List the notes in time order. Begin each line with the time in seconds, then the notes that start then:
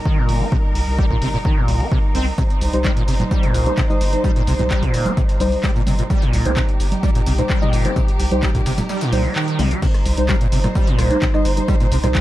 Already playing: G3 D#4 A#4
0.05 D#3, kick
0.17 A#2
0.29 G1, open hi-hat
0.41 C4
0.52 C3, kick
0.75 C2, open hi-hat
0.87 C2
0.99 G3, kick
1.10 A#2, kick
1.22 G1 C3, open hi-hat
1.34 A#2
1.45 D#3, kick
1.57 A#2
1.68 C2, open hi-hat
1.80 C4, open hi-hat
1.92 C3, kick
2.15 C2 C4, open hi-hat
2.38 C3 C5, kick, tambourine, shaker
2.50 closed hi-hat, shaker
2.61 C2, open hi-hat, tambourine, shaker
2.73 C2 G3 D#4 C5, closed hi-hat, shaker
2.85 G3, kick, snare, clap, tambourine, shaker
2.97 A#2, closed hi-hat
3.08 G1 C3, open hi-hat, tambourine, shaker
3.20 A#2, snare, closed hi-hat, low conga, shaker
3.31 G3, kick, tambourine, shaker
3.43 A#2, closed hi-hat, shaker
3.54 C2, open hi-hat, tambourine, shaker
3.66 G3 C4 D#4 C5, closed hi-hat, shaker
3.77 C3, kick, snare, clap, tambourine, shaker
3.90 G3 D#4 D#5, shaker
4.01 G1, open hi-hat, tambourine, shaker
4.13 G3 D#4 C5, closed hi-hat, shaker
4.24 G3, kick, tambourine, shaker
4.36 A#2, closed hi-hat, shaker
4.47 C2 C3, open hi-hat, tambourine, shaker
4.59 C2 A#2 G3 D#4 C5, closed hi-hat, low conga, shaker
4.71 G3, kick, snare, clap, tambourine, shaker
4.83 A#2, kick, closed hi-hat, shaker
4.94 G1, open hi-hat, tambourine, shaker
5.06 C4, closed hi-hat, low conga, shaker
5.17 C3, kick, tambourine, shaker
5.29 snare, closed hi-hat, shaker
5.40 C2 G3 D#4 C5, open hi-hat, tambourine, low conga, shaker
5.52 open hi-hat, shaker
5.63 G3, kick, snare, clap, tambourine, shaker
5.76 A#2, shaker
5.87 G1 C3, open hi-hat, tambourine, low conga, shaker
5.99 A#2, closed hi-hat, shaker
6.10 G3 G4, kick, tambourine, shaker
6.22 A#2, closed hi-hat, shaker
6.33 C2, open hi-hat, tambourine, shaker
6.45 C2 G3 C4 D#4 C5, closed hi-hat, shaker
6.57 C3, kick, snare, clap, tambourine, shaker
6.69 closed hi-hat
6.80 G1, open hi-hat, tambourine, shaker
6.92 snare, closed hi-hat, low conga, shaker
7.03 G3, kick, tambourine, shaker
7.15 A#2, closed hi-hat, shaker
7.26 C2 C3, open hi-hat, tambourine, shaker
7.38 A#2 G3 D#4 C5, closed hi-hat, shaker
7.50 G3, kick, clap, tambourine, shaker
7.62 A#2 G3 D#4 D#5, shaker
7.73 G1, open hi-hat, tambourine, shaker
7.85 G3 C4 D#4 C5, closed hi-hat, shaker
7.96 C3, kick, tambourine, shaker
8.08 closed hi-hat, shaker
8.19 C2, open hi-hat, tambourine, shaker
8.31 C2 G3 D#4 C5, closed hi-hat, low conga, shaker
8.43 G3, kick, snare, clap, tambourine, shaker
8.55 A#2, kick, closed hi-hat, shaker
8.66 G1 C3, snare, open hi-hat, tambourine, shaker
8.78 A#2, snare, closed hi-hat, tambourine, low conga, shaker
8.89 G3, snare, tambourine, shaker
9.01 A#2, snare, closed hi-hat, tambourine, shaker
9.12 C2 G3 D#4 C5, open hi-hat, tambourine, low conga, shaker
9.24 G3, open hi-hat, shaker
9.36 D#3, clap, shaker
9.48 closed hi-hat, shaker
9.59 C2 C3, open hi-hat, high tom, tambourine, low conga, shaker
9.71 G3, closed hi-hat, shaker
9.82 C3 G3 D#4 C5, kick, crash, tambourine, shaker
9.94 cross-stick, closed hi-hat, shaker
10.06 C2, open hi-hat, tambourine, shaker
10.17 C2 G3 D#4 C5, closed hi-hat, shaker
10.29 G3, kick, cross-stick, snare, clap, tambourine, shaker
10.41 A#2, closed hi-hat, shaker
10.52 G1 C3, open hi-hat, tambourine, shaker
10.64 A#2, cross-stick, snare, closed hi-hat, low conga, shaker
10.75 G3, kick, tambourine, shaker
10.87 A#2, closed hi-hat, shaker
10.98 C2, cross-stick, open hi-hat, tambourine, shaker
11.11 G3 C4 D#4 C5, closed hi-hat, shaker
11.22 C3, kick, snare, clap, tambourine, shaker
11.34 G3 D#4 D#5, cross-stick, shaker
11.45 G1, open hi-hat, tambourine, shaker
11.57 G3 D#4 C5, closed hi-hat, shaker
11.68 G3, kick, cross-stick, tambourine, shaker
11.80 A#2, closed hi-hat, shaker
11.92 C2 C3, open hi-hat, tambourine, shaker
12.04 C2 A#2 G3 D#4 C5, cross-stick, closed hi-hat, low conga, shaker
12.15 G3, kick, snare, clap, tambourine, shaker